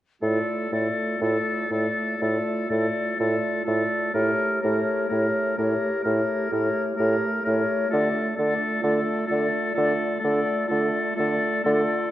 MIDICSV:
0, 0, Header, 1, 6, 480
1, 0, Start_track
1, 0, Key_signature, -1, "minor"
1, 0, Tempo, 993377
1, 105, Time_signature, 4, 2, 24, 8
1, 1066, Tempo, 967742
1, 2506, Tempo, 934579
1, 6104, End_track
2, 0, Start_track
2, 0, Title_t, "Flute"
2, 0, Program_c, 0, 73
2, 117, Note_on_c, 0, 74, 31
2, 345, Note_off_c, 0, 74, 0
2, 351, Note_on_c, 0, 74, 27
2, 584, Note_off_c, 0, 74, 0
2, 595, Note_on_c, 0, 74, 27
2, 824, Note_off_c, 0, 74, 0
2, 826, Note_on_c, 0, 74, 29
2, 1055, Note_off_c, 0, 74, 0
2, 1058, Note_on_c, 0, 74, 30
2, 1300, Note_off_c, 0, 74, 0
2, 1306, Note_on_c, 0, 74, 28
2, 1544, Note_off_c, 0, 74, 0
2, 1548, Note_on_c, 0, 74, 26
2, 1782, Note_off_c, 0, 74, 0
2, 1790, Note_on_c, 0, 74, 28
2, 2021, Note_off_c, 0, 74, 0
2, 2026, Note_on_c, 0, 73, 30
2, 2261, Note_off_c, 0, 73, 0
2, 2265, Note_on_c, 0, 73, 28
2, 2495, Note_off_c, 0, 73, 0
2, 2498, Note_on_c, 0, 73, 29
2, 2741, Note_off_c, 0, 73, 0
2, 2748, Note_on_c, 0, 73, 29
2, 2984, Note_off_c, 0, 73, 0
2, 2991, Note_on_c, 0, 73, 32
2, 3224, Note_off_c, 0, 73, 0
2, 3230, Note_on_c, 0, 73, 31
2, 3462, Note_off_c, 0, 73, 0
2, 3465, Note_on_c, 0, 73, 28
2, 3598, Note_off_c, 0, 73, 0
2, 3707, Note_on_c, 0, 73, 32
2, 3941, Note_off_c, 0, 73, 0
2, 3947, Note_on_c, 0, 74, 34
2, 4177, Note_off_c, 0, 74, 0
2, 4180, Note_on_c, 0, 74, 32
2, 4410, Note_off_c, 0, 74, 0
2, 4413, Note_on_c, 0, 74, 31
2, 4648, Note_off_c, 0, 74, 0
2, 4655, Note_on_c, 0, 74, 35
2, 4889, Note_off_c, 0, 74, 0
2, 4902, Note_on_c, 0, 74, 37
2, 5131, Note_off_c, 0, 74, 0
2, 5136, Note_on_c, 0, 74, 39
2, 5370, Note_off_c, 0, 74, 0
2, 5381, Note_on_c, 0, 74, 36
2, 5616, Note_off_c, 0, 74, 0
2, 5627, Note_on_c, 0, 74, 36
2, 5862, Note_off_c, 0, 74, 0
2, 5866, Note_on_c, 0, 74, 36
2, 6101, Note_off_c, 0, 74, 0
2, 6104, End_track
3, 0, Start_track
3, 0, Title_t, "Oboe"
3, 0, Program_c, 1, 68
3, 109, Note_on_c, 1, 69, 31
3, 342, Note_off_c, 1, 69, 0
3, 355, Note_on_c, 1, 69, 26
3, 587, Note_off_c, 1, 69, 0
3, 590, Note_on_c, 1, 69, 30
3, 824, Note_off_c, 1, 69, 0
3, 832, Note_on_c, 1, 69, 27
3, 1064, Note_off_c, 1, 69, 0
3, 1076, Note_on_c, 1, 69, 28
3, 1309, Note_off_c, 1, 69, 0
3, 1312, Note_on_c, 1, 69, 27
3, 1547, Note_off_c, 1, 69, 0
3, 1557, Note_on_c, 1, 69, 26
3, 1780, Note_off_c, 1, 69, 0
3, 1783, Note_on_c, 1, 69, 27
3, 2018, Note_off_c, 1, 69, 0
3, 2027, Note_on_c, 1, 70, 33
3, 2257, Note_off_c, 1, 70, 0
3, 2260, Note_on_c, 1, 70, 28
3, 2496, Note_off_c, 1, 70, 0
3, 2498, Note_on_c, 1, 70, 33
3, 2741, Note_off_c, 1, 70, 0
3, 2747, Note_on_c, 1, 70, 30
3, 2981, Note_off_c, 1, 70, 0
3, 2984, Note_on_c, 1, 70, 33
3, 3220, Note_off_c, 1, 70, 0
3, 3236, Note_on_c, 1, 70, 27
3, 3394, Note_off_c, 1, 70, 0
3, 3460, Note_on_c, 1, 70, 34
3, 3698, Note_off_c, 1, 70, 0
3, 3706, Note_on_c, 1, 70, 30
3, 3938, Note_off_c, 1, 70, 0
3, 3941, Note_on_c, 1, 69, 38
3, 4174, Note_off_c, 1, 69, 0
3, 4177, Note_on_c, 1, 69, 33
3, 4411, Note_off_c, 1, 69, 0
3, 4414, Note_on_c, 1, 69, 36
3, 4639, Note_off_c, 1, 69, 0
3, 4642, Note_on_c, 1, 69, 34
3, 4883, Note_off_c, 1, 69, 0
3, 4890, Note_on_c, 1, 69, 38
3, 5116, Note_off_c, 1, 69, 0
3, 5119, Note_on_c, 1, 69, 32
3, 5361, Note_off_c, 1, 69, 0
3, 5366, Note_on_c, 1, 69, 41
3, 5609, Note_off_c, 1, 69, 0
3, 5614, Note_on_c, 1, 69, 37
3, 5855, Note_off_c, 1, 69, 0
3, 5860, Note_on_c, 1, 69, 47
3, 6098, Note_off_c, 1, 69, 0
3, 6104, End_track
4, 0, Start_track
4, 0, Title_t, "Clarinet"
4, 0, Program_c, 2, 71
4, 104, Note_on_c, 2, 65, 31
4, 339, Note_off_c, 2, 65, 0
4, 343, Note_on_c, 2, 65, 25
4, 580, Note_off_c, 2, 65, 0
4, 586, Note_on_c, 2, 65, 26
4, 819, Note_off_c, 2, 65, 0
4, 822, Note_on_c, 2, 65, 22
4, 1058, Note_off_c, 2, 65, 0
4, 1067, Note_on_c, 2, 65, 31
4, 1305, Note_off_c, 2, 65, 0
4, 1308, Note_on_c, 2, 65, 25
4, 1545, Note_off_c, 2, 65, 0
4, 1554, Note_on_c, 2, 65, 30
4, 1778, Note_off_c, 2, 65, 0
4, 1781, Note_on_c, 2, 65, 29
4, 2017, Note_off_c, 2, 65, 0
4, 2024, Note_on_c, 2, 67, 29
4, 2260, Note_off_c, 2, 67, 0
4, 2265, Note_on_c, 2, 67, 24
4, 2490, Note_off_c, 2, 67, 0
4, 2493, Note_on_c, 2, 67, 27
4, 2738, Note_off_c, 2, 67, 0
4, 2745, Note_on_c, 2, 67, 28
4, 2982, Note_off_c, 2, 67, 0
4, 2986, Note_on_c, 2, 67, 30
4, 3212, Note_off_c, 2, 67, 0
4, 3215, Note_on_c, 2, 67, 31
4, 3455, Note_off_c, 2, 67, 0
4, 3460, Note_on_c, 2, 67, 32
4, 3629, Note_off_c, 2, 67, 0
4, 3700, Note_on_c, 2, 67, 32
4, 3934, Note_off_c, 2, 67, 0
4, 3937, Note_on_c, 2, 65, 38
4, 4174, Note_off_c, 2, 65, 0
4, 4176, Note_on_c, 2, 65, 35
4, 4405, Note_off_c, 2, 65, 0
4, 4408, Note_on_c, 2, 65, 35
4, 4642, Note_off_c, 2, 65, 0
4, 4646, Note_on_c, 2, 65, 34
4, 4885, Note_off_c, 2, 65, 0
4, 4890, Note_on_c, 2, 65, 35
4, 5125, Note_off_c, 2, 65, 0
4, 5128, Note_on_c, 2, 65, 36
4, 5364, Note_off_c, 2, 65, 0
4, 5367, Note_on_c, 2, 65, 39
4, 5606, Note_off_c, 2, 65, 0
4, 5609, Note_on_c, 2, 65, 37
4, 5852, Note_off_c, 2, 65, 0
4, 5860, Note_on_c, 2, 65, 43
4, 6096, Note_off_c, 2, 65, 0
4, 6104, End_track
5, 0, Start_track
5, 0, Title_t, "French horn"
5, 0, Program_c, 3, 60
5, 109, Note_on_c, 3, 57, 26
5, 340, Note_off_c, 3, 57, 0
5, 343, Note_on_c, 3, 57, 26
5, 571, Note_off_c, 3, 57, 0
5, 574, Note_on_c, 3, 57, 27
5, 814, Note_off_c, 3, 57, 0
5, 817, Note_on_c, 3, 57, 26
5, 1053, Note_off_c, 3, 57, 0
5, 1056, Note_on_c, 3, 57, 27
5, 1299, Note_off_c, 3, 57, 0
5, 1306, Note_on_c, 3, 57, 23
5, 1540, Note_off_c, 3, 57, 0
5, 1543, Note_on_c, 3, 57, 26
5, 1780, Note_off_c, 3, 57, 0
5, 1782, Note_on_c, 3, 57, 26
5, 2018, Note_off_c, 3, 57, 0
5, 2024, Note_on_c, 3, 57, 28
5, 2260, Note_off_c, 3, 57, 0
5, 2269, Note_on_c, 3, 57, 28
5, 2494, Note_off_c, 3, 57, 0
5, 2497, Note_on_c, 3, 57, 31
5, 2740, Note_off_c, 3, 57, 0
5, 2746, Note_on_c, 3, 57, 28
5, 2912, Note_off_c, 3, 57, 0
5, 2981, Note_on_c, 3, 57, 30
5, 3219, Note_off_c, 3, 57, 0
5, 3226, Note_on_c, 3, 57, 27
5, 3453, Note_off_c, 3, 57, 0
5, 3456, Note_on_c, 3, 57, 33
5, 3694, Note_off_c, 3, 57, 0
5, 3697, Note_on_c, 3, 57, 32
5, 3930, Note_off_c, 3, 57, 0
5, 3933, Note_on_c, 3, 57, 35
5, 4172, Note_off_c, 3, 57, 0
5, 4182, Note_on_c, 3, 57, 31
5, 4412, Note_off_c, 3, 57, 0
5, 4415, Note_on_c, 3, 57, 35
5, 4642, Note_off_c, 3, 57, 0
5, 4645, Note_on_c, 3, 57, 34
5, 4884, Note_off_c, 3, 57, 0
5, 4888, Note_on_c, 3, 57, 39
5, 5122, Note_off_c, 3, 57, 0
5, 5125, Note_on_c, 3, 57, 37
5, 5364, Note_off_c, 3, 57, 0
5, 5369, Note_on_c, 3, 57, 38
5, 5610, Note_off_c, 3, 57, 0
5, 5617, Note_on_c, 3, 57, 36
5, 5857, Note_off_c, 3, 57, 0
5, 5861, Note_on_c, 3, 57, 38
5, 6038, Note_off_c, 3, 57, 0
5, 6104, End_track
6, 0, Start_track
6, 0, Title_t, "Bassoon"
6, 0, Program_c, 4, 70
6, 105, Note_on_c, 4, 45, 32
6, 183, Note_off_c, 4, 45, 0
6, 347, Note_on_c, 4, 45, 25
6, 425, Note_off_c, 4, 45, 0
6, 586, Note_on_c, 4, 45, 30
6, 664, Note_off_c, 4, 45, 0
6, 825, Note_on_c, 4, 45, 28
6, 902, Note_off_c, 4, 45, 0
6, 1070, Note_on_c, 4, 45, 30
6, 1149, Note_off_c, 4, 45, 0
6, 1314, Note_on_c, 4, 45, 31
6, 1394, Note_off_c, 4, 45, 0
6, 1559, Note_on_c, 4, 45, 32
6, 1638, Note_off_c, 4, 45, 0
6, 1795, Note_on_c, 4, 45, 28
6, 1874, Note_off_c, 4, 45, 0
6, 2029, Note_on_c, 4, 45, 34
6, 2108, Note_off_c, 4, 45, 0
6, 2273, Note_on_c, 4, 45, 28
6, 2352, Note_off_c, 4, 45, 0
6, 2509, Note_on_c, 4, 45, 34
6, 2591, Note_off_c, 4, 45, 0
6, 2752, Note_on_c, 4, 45, 29
6, 2834, Note_off_c, 4, 45, 0
6, 2991, Note_on_c, 4, 45, 34
6, 3073, Note_off_c, 4, 45, 0
6, 3230, Note_on_c, 4, 45, 30
6, 3313, Note_off_c, 4, 45, 0
6, 3474, Note_on_c, 4, 45, 38
6, 3556, Note_off_c, 4, 45, 0
6, 3716, Note_on_c, 4, 45, 33
6, 3798, Note_off_c, 4, 45, 0
6, 3952, Note_on_c, 4, 50, 41
6, 4035, Note_off_c, 4, 50, 0
6, 4189, Note_on_c, 4, 50, 35
6, 4271, Note_off_c, 4, 50, 0
6, 4420, Note_on_c, 4, 50, 41
6, 4502, Note_off_c, 4, 50, 0
6, 4664, Note_on_c, 4, 50, 36
6, 4746, Note_off_c, 4, 50, 0
6, 4902, Note_on_c, 4, 50, 36
6, 4985, Note_off_c, 4, 50, 0
6, 5143, Note_on_c, 4, 50, 40
6, 5225, Note_off_c, 4, 50, 0
6, 5381, Note_on_c, 4, 50, 43
6, 5464, Note_off_c, 4, 50, 0
6, 5628, Note_on_c, 4, 50, 38
6, 5711, Note_off_c, 4, 50, 0
6, 5869, Note_on_c, 4, 50, 46
6, 5951, Note_off_c, 4, 50, 0
6, 6104, End_track
0, 0, End_of_file